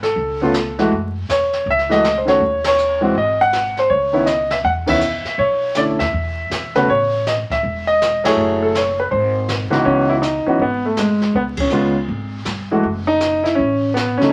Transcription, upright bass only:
0.00 0.12 G#1 medium
0.16 0.87 C#2 medium
0.91 1.26 F#2 medium
1.29 1.63 E2 medium
1.66 2.37 C#2 medium
2.41 3.11 D#2 medium
3.15 3.86 G#1 medium
3.90 4.61 C#2 medium
4.64 5.21 E2 medium
5.24 muted upright bass stroke soft
5.38 5.95 B1 medium
6.00 6.12 D#2 medium
6.13 6.48 E2 medium
6.50 6.85 E2 medium
6.88 7.45 A1 medium
7.50 7.62 A#1 medium
7.63 8.34 E1 medium
8.36 9.07 F#1 medium
9.11 9.69 G#1 medium
9.72 muted upright bass stroke soft
9.85 10.43 C#2 medium
10.46 muted upright bass stroke soft
10.59 11.31 G#1 medium
11.33 12.05 C#2 medium
12.08 12.44 G#1 medium
12.46 12.81 G1 medium
12.83 13.55 F#1 medium
13.59 14.16 A1 medium
14.20 muted upright bass stroke soft

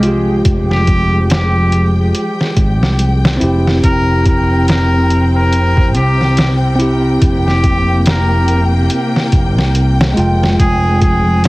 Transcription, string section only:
0.00 3.79 F3 medium
0.00 3.79 G#3 medium
0.00 11.48 G5 medium
3.83 10.55 C3 medium
3.83 7.18 C4 medium
7.21 10.56 A#3 medium
10.60 11.48 F3 medium
10.60 11.48 G#3 medium

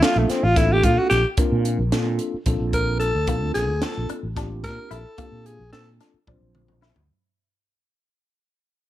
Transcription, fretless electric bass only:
0.16 0.28 A#1 medium
0.43 0.85 A1 medium
0.84 0.96 A#2 medium
0.98 muted fretless electric bass stroke soft
1.11 1.23 A#1 medium
1.38 muted fretless electric bass stroke soft
1.52 1.77 A#2 medium
1.78 1.91 A#1 medium
1.92 2.18 A#2 medium
2.34 muted fretless electric bass stroke soft
2.46 2.59 A#1 medium
2.60 3.11 A#1 medium
3.15 3.27 D2 medium
3.27 3.42 A#1 medium
3.42 3.55 D2 medium
3.55 3.69 A#1 medium
3.69 3.82 D2 medium
3.97 4.09 A#1 medium
4.23 4.65 A1 medium
4.64 4.77 A#2 medium
4.91 5.04 A#1 medium
5.18 muted fretless electric bass stroke soft
5.31 5.57 A#2 medium
5.59 5.72 A#1 medium
5.72 5.98 A#2 medium
6.14 muted fretless electric bass stroke soft
6.28 6.40 A#1 medium
6.41 6.92 A#1 medium
6.96 7.09 D2 medium

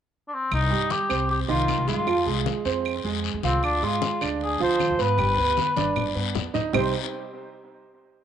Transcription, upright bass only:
0.51 0.70 C2 loud
0.71 0.90 G2 medium
1.10 1.47 C2 medium
1.49 1.77 C2 medium
1.78 1.87 C2 medium
1.87 2.07 G2 medium
2.07 2.26 F2 loud
2.26 2.45 C2 medium
2.65 3.02 F2 medium
3.04 3.32 F2 medium
3.34 3.43 F2 medium
3.43 3.62 C2 medium
3.62 3.81 D2 loud
3.82 4.01 G#2 medium
4.21 4.58 D2 medium
4.61 4.88 D2 medium
4.89 4.99 D2 medium
4.99 5.19 G#2 medium
5.18 5.37 G1 loud
5.37 5.56 D2 medium
5.76 6.13 G1 medium
6.15 6.33 G2 medium
6.35 6.53 F2 medium
6.54 6.72 D2 medium
6.73 6.92 C2 medium

